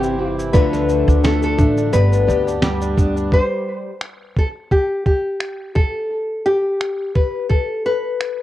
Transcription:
Already playing: G1 C3 E3 G3 C4 E4 G4 B4 C5
0.03 E4, shaker
0.18 C4
0.38 E4, shaker
0.52 D2 D3 F3 A3 F4 B4 D5, kick, shaker
0.73 D4, snare, shaker
0.89 A3, shaker
1.08 D2 D4, shaker
1.24 A3 A4, snare, shaker
1.42 D4 A4, shaker
1.58 A1 A3 D4, kick, shaker
1.77 D4, shaker
1.92 G1 G2 B3 G4 B4 D5, shaker
2.12 D4, shaker
2.26 D2 B3 G4 D5, shaker
2.47 D4, shaker
2.62 G3 G4, snare, shaker
2.81 D4, shaker
2.97 B3 D4, kick, shaker
3.16 D4, shaker
3.32 C5, kick
4.01 finger snap
4.37 A4, kick
4.71 G4, kick
5.06 G4, kick
5.41 finger snap
5.75 A4, kick
6.46 G4
6.81 finger snap
7.15 B4, kick
7.49 A4, kick
7.86 B4
8.20 finger snap

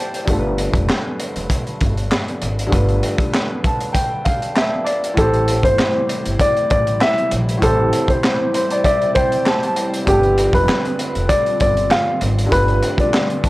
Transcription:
Already playing: A2 E3 C4 G4 C5 D5 E5 G5 A5
0.14 closed hi-hat
0.25 G1 G2 D3 A3, kick, closed hi-hat
0.30 F4 A4
0.39 B4
0.58 closed hi-hat
0.74 F1, kick, closed hi-hat
0.89 snare, clap
1.20 closed hi-hat
1.36 F1, closed hi-hat
1.50 kick, closed hi-hat
1.67 closed hi-hat
1.81 G1, kick, closed hi-hat
1.97 closed hi-hat
2.12 snare, clap
2.28 closed hi-hat
2.42 G#1, closed hi-hat
2.59 closed hi-hat
2.66 G2 D3 A3
2.72 G1 F4 B4, kick, closed hi-hat
2.89 closed hi-hat
3.03 closed hi-hat
3.18 kick, closed hi-hat
3.34 snare, clap
3.64 A5, kick, closed hi-hat
3.81 closed hi-hat
3.93 G5, kick, closed hi-hat
4.25 F5, kick, closed hi-hat
4.42 closed hi-hat
4.56 E5, snare, clap
4.84 D5, closed hi-hat
5.04 closed hi-hat
5.14 A1 A2 C3 E3 G3 A3 C4 E4, kick, closed hi-hat
5.18 G4 A4 C5
5.34 closed hi-hat
5.48 closed hi-hat
5.63 G1 C5, kick, closed hi-hat
5.79 snare, clap
6.09 closed hi-hat
6.26 G1, closed hi-hat
6.39 D5, kick, closed hi-hat
6.57 closed hi-hat
6.70 A1 D5, kick, closed hi-hat
6.87 closed hi-hat
7.01 E5, snare, clap
7.18 closed hi-hat
7.31 A#1, closed hi-hat
7.49 closed hi-hat
7.58 A2 E3 C4
7.62 A1 C4 G4 A4 C5, kick, closed hi-hat
7.93 closed hi-hat
8.08 C5, kick, closed hi-hat
8.24 snare, clap
8.54 C5, closed hi-hat
8.70 D5, closed hi-hat
8.84 D5 E5, kick, closed hi-hat
9.02 closed hi-hat
9.15 C5 G5, kick, closed hi-hat
9.32 closed hi-hat
9.46 A5, snare, clap
9.63 A5, closed hi-hat
9.76 closed hi-hat
9.94 closed hi-hat
10.05 G1 G2 D3 A3 F4 G4, kick, closed hi-hat
10.10 F4 A4
10.18 B4
10.23 closed hi-hat
10.38 closed hi-hat
10.53 F1 B4, kick, closed hi-hat
10.69 snare, clap
10.85 closed hi-hat
10.99 closed hi-hat
11.15 F1, closed hi-hat
11.29 D5, kick, closed hi-hat
11.46 closed hi-hat
11.60 G1 D5, kick, closed hi-hat
11.77 closed hi-hat
11.91 F5, snare, clap
12.21 G#1, closed hi-hat
12.39 closed hi-hat
12.46 G2 D3 A3
12.52 G1 F4 B4, kick, closed hi-hat
12.68 closed hi-hat
12.83 closed hi-hat
12.98 D5, kick, closed hi-hat
13.14 snare, clap
13.30 closed hi-hat
13.44 A5, kick, closed hi-hat

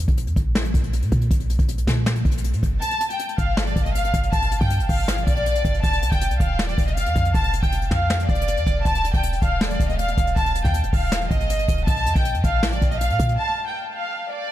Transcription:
0.08 A#1, kick, closed hi-hat
0.17 closed hi-hat
0.27 F2, closed hi-hat
0.36 A1, kick, closed hi-hat
0.55 snare
0.65 closed hi-hat
0.74 A#1, kick, closed hi-hat
0.84 closed hi-hat
0.93 closed hi-hat
1.02 A#2, closed hi-hat
1.12 A#2, kick, closed hi-hat
1.21 closed hi-hat
1.31 A#1, kick, closed hi-hat
1.40 closed hi-hat
1.50 closed hi-hat
1.59 A#1, kick, closed hi-hat
1.68 closed hi-hat
1.78 closed hi-hat
1.87 A#2, kick, snare
2.06 snare
2.16 closed hi-hat
2.25 A#1, kick, closed hi-hat
2.31 closed hi-hat
2.38 closed hi-hat
2.44 closed hi-hat
2.53 A#2, closed hi-hat
2.63 G1, kick, closed hi-hat
2.82 A5, closed hi-hat
2.91 closed hi-hat
3.01 closed hi-hat
3.10 G5, closed hi-hat
3.19 closed hi-hat
3.29 closed hi-hat
3.38 G1 F5, kick, closed hi-hat
3.57 snare
3.67 D5, closed hi-hat
3.76 G1, kick, closed hi-hat
3.85 D#5, closed hi-hat
3.95 F5, closed hi-hat
4.04 closed hi-hat
4.14 G1, kick, closed hi-hat
4.23 closed hi-hat
4.33 G1 A5, kick, closed hi-hat
4.42 closed hi-hat
4.52 closed hi-hat
4.61 G2 G5, kick, closed hi-hat
4.70 closed hi-hat
4.80 F1, closed hi-hat
4.89 G1 F5, kick, open hi-hat
5.08 snare, hi-hat pedal
5.18 closed hi-hat
5.27 A#1 D5, kick, closed hi-hat
5.37 closed hi-hat
5.46 closed hi-hat
5.55 closed hi-hat
5.65 G1, kick, closed hi-hat
5.74 closed hi-hat
5.84 F1 A5, kick, closed hi-hat
5.93 closed hi-hat
6.02 C2, closed hi-hat
6.12 F1 G5, kick, closed hi-hat
6.21 closed hi-hat
6.31 C2, closed hi-hat
6.40 D#1 F5, kick, closed hi-hat
6.59 snare
6.68 D5, closed hi-hat
6.78 F1, kick, closed hi-hat
6.87 D#5, closed hi-hat
6.97 F5, closed hi-hat
7.06 F2, closed hi-hat
7.16 F2, kick, closed hi-hat
7.25 closed hi-hat
7.34 F1 A5, kick, closed hi-hat
7.44 closed hi-hat
7.53 closed hi-hat
7.63 F1 G5, kick, closed hi-hat
7.72 closed hi-hat
7.82 closed hi-hat
7.91 F2 F5, kick, snare
8.10 snare
8.19 closed hi-hat
8.29 F1 D5, kick, closed hi-hat
8.35 closed hi-hat
8.41 closed hi-hat
8.48 closed hi-hat
8.57 F2, closed hi-hat
8.67 F1, kick, closed hi-hat
8.85 D#1 A5, kick, closed hi-hat
8.95 closed hi-hat
9.04 closed hi-hat
9.14 D#1 G5, kick, closed hi-hat
9.23 closed hi-hat
9.33 closed hi-hat
9.42 D#1 F5, kick, closed hi-hat
9.61 snare
9.70 D5, closed hi-hat
9.80 D#1, kick, closed hi-hat
9.89 D#5, closed hi-hat
9.99 F5, closed hi-hat
10.08 closed hi-hat
10.18 D#1, kick, closed hi-hat
10.27 closed hi-hat
10.36 D#1 A5, kick, closed hi-hat
10.46 closed hi-hat
10.55 closed hi-hat
10.65 D#2 G5, kick, closed hi-hat
10.74 closed hi-hat
10.84 D1, closed hi-hat
10.93 D#1 F5, kick, open hi-hat
11.12 snare, hi-hat pedal
11.21 closed hi-hat
11.31 G1 D#5, kick, closed hi-hat
11.40 closed hi-hat
11.50 closed hi-hat
11.59 closed hi-hat
11.68 D#1, kick, closed hi-hat
11.78 closed hi-hat
11.87 A#1 A5, kick, closed hi-hat
11.97 closed hi-hat
12.06 F2, closed hi-hat
12.16 A#1 G5, kick, closed hi-hat
12.25 closed hi-hat
12.34 F2, closed hi-hat
12.44 A1 F5, kick, closed hi-hat
12.63 snare
12.72 D5, closed hi-hat
12.82 A#1, kick, closed hi-hat
12.91 D#5, closed hi-hat
13.01 F5, closed hi-hat
13.10 A#2, closed hi-hat
13.19 A#2, kick, closed hi-hat
13.29 closed hi-hat
13.38 A5
13.67 G5
13.95 F5
14.33 D5

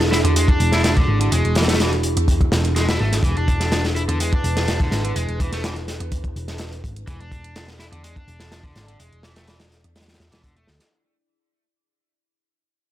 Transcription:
Already playing: E1 D4 E4 F#4 G#4
0.01 snare, closed hi-hat
0.12 E4, snare, closed hi-hat
0.24 E2 D3, closed hi-hat
0.36 G#3, closed hi-hat
0.48 D4, kick, closed hi-hat
0.60 E1, closed hi-hat
0.72 E4, snare, closed hi-hat
0.84 E4, snare, closed hi-hat
0.97 D3, kick, closed hi-hat
1.08 G#1
1.21 D3, closed hi-hat
1.32 E1 G#3, closed hi-hat
1.45 E1, closed hi-hat
1.55 E3, snare, closed hi-hat
1.62 snare, closed hi-hat
1.68 A3, snare, closed hi-hat
1.74 snare, closed hi-hat
1.80 E3, snare, closed hi-hat
1.93 closed hi-hat
2.03 closed hi-hat
2.17 E2, closed hi-hat
2.28 kick, closed hi-hat
2.41 kick, closed hi-hat
2.52 E1, snare, closed hi-hat
2.65 closed hi-hat
2.76 G#3, snare, closed hi-hat
2.89 E4, snare, closed hi-hat
3.00 G#1 A3
3.12 snare, closed hi-hat
3.23 E1 E3 B4, kick, closed hi-hat
3.37 E1 D4, closed hi-hat
3.48 kick, closed hi-hat
3.60 snare, closed hi-hat
3.72 snare, closed hi-hat
3.84 snare, closed hi-hat
3.96 E4, closed hi-hat
4.08 E2 D3, closed hi-hat
4.20 G#3, closed hi-hat
4.33 D4, kick, closed hi-hat
4.44 E1, closed hi-hat
4.57 snare, closed hi-hat
4.68 snare, closed hi-hat
4.80 D3, kick, closed hi-hat
4.91 G#1, snare, closed hi-hat
5.04 D3, closed hi-hat
5.16 E1 G#3, closed hi-hat
5.29 E1, closed hi-hat
5.40 E3, kick, closed hi-hat
5.52 A3, snare, closed hi-hat
5.64 E3, snare, closed hi-hat
5.76 closed hi-hat
5.88 snare, closed hi-hat
6.00 E2, closed hi-hat
6.12 kick, closed hi-hat
6.24 kick, closed hi-hat
6.36 E1, closed hi-hat
6.48 snare, closed hi-hat
6.58 snare, closed hi-hat
6.60 closed hi-hat
6.72 closed hi-hat
6.84 G#1, kick, closed hi-hat
6.96 closed hi-hat
7.07 E1 E3 D5, kick, closed hi-hat
7.20 E1 D4, closed hi-hat
7.32 kick, closed hi-hat
7.44 closed hi-hat
7.56 snare, closed hi-hat
7.68 snare, closed hi-hat
7.79 E4, snare, closed hi-hat
7.92 E2 D3, closed hi-hat
8.03 G#3, closed hi-hat
8.16 D4, kick, closed hi-hat
8.28 E1, closed hi-hat
8.40 snare, closed hi-hat
8.52 snare, closed hi-hat
8.64 D3, kick, closed hi-hat
8.76 G#1, snare, closed hi-hat
8.88 D3, closed hi-hat
8.99 E1 G#3, closed hi-hat
9.13 E1, closed hi-hat
9.23 E3, snare, closed hi-hat
9.36 A3, snare, closed hi-hat
9.47 E3, snare, closed hi-hat
9.60 snare, closed hi-hat
9.72 snare, closed hi-hat
9.84 E2, closed hi-hat
9.96 snare, closed hi-hat
10.01 snare, closed hi-hat
10.08 snare, closed hi-hat
10.14 snare, closed hi-hat
10.20 E2, snare, closed hi-hat
10.32 E1 E3, snare, closed hi-hat
10.44 D3, kick, closed hi-hat
10.56 A3, closed hi-hat
10.67 D2, snare
10.80 snare, closed hi-hat

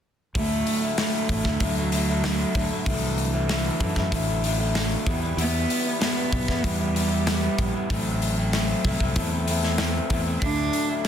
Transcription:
0.35 D2 D3 F#3 A3 E4, kick, open hi-hat
0.67 open hi-hat
0.82 F#3 A3 E4
0.98 D3 F#3 A3 E4, snare, open hi-hat
1.29 A1 A3 E4, kick, open hi-hat
1.45 D2 F#3 A3 E4, kick, snare
1.60 D2 D3 F#3 A3 E4, kick, open hi-hat
1.76 F#3 A3 E4
1.92 D3 F#3 A3 E4, open hi-hat
2.08 F#3 A3 E4
2.24 D3 F#3 A3 E4, snare, open hi-hat
2.55 D2 D3 F#3 A3 E4, kick, open hi-hat
2.70 F#3 A3 E4
2.85 C2 D3 E3 F#3 A3 E4, kick, open hi-hat
3.18 open hi-hat
3.33 F#3 A3 E4
3.49 D3 F#3 A3 E4, snare, open hi-hat
3.80 F#2 D3 F#3 A3 E4, kick, open hi-hat
3.96 F#2 F#3 A3 E4, kick, snare
4.11 A1 D3 F#3 A3 E4, kick, open hi-hat
4.28 F#3 A3 E4
4.43 D3 F#3 A3 E4, open hi-hat
4.58 F#3 A3 E4
4.74 D3 F#3 A3 E4, snare, open hi-hat
5.06 E2 E3 G3 B3 E4, kick, open hi-hat
5.21 G3 B3 E4
5.37 E2 E3 G3 B3 E4, open hi-hat
5.70 open hi-hat
5.84 G3 B3 E4
6.00 E3 G3 B3 E4, snare, open hi-hat
6.31 B1 E3 G3 B3 E4, kick, open hi-hat
6.48 E2 G3 B3 E4, kick, snare
6.63 E2 E3 G3 B3 E4, kick, open hi-hat
6.79 G3 B3 E4
6.95 E3 G3 B3 E4, open hi-hat
7.10 G3 B3 E4
7.26 E3 G3 B3 E4, snare, open hi-hat
7.58 A#1 E3 G3 B3 E4, kick, open hi-hat
7.74 G3 B3 E4
7.90 A1 A2 E3 F#3 A3 C4 E4, kick, open hi-hat
8.22 open hi-hat
8.37 A3 C4 E4
8.53 A2 E3 A3 C4 E4, snare, open hi-hat
8.84 C2 E3 A3 C4 E4, kick, open hi-hat
9.00 C2 A3 C4 E4, kick
9.15 E2 E3 A3 C4 E4, kick, open hi-hat
9.31 A3 C4 E4
9.47 E3 A3 C4 E4, open hi-hat
9.63 A3 C4 E4, snare
9.78 A2 E3 A3 C4 E4, snare, open hi-hat
10.09 E2 E3 A3 C4 E4, kick, open hi-hat
10.25 A3 C4 E4
10.41 D2 D3 F#3 A3 D4 E4, kick, open hi-hat
10.73 open hi-hat
10.89 F#3 A3 E4
11.03 D4, open hi-hat

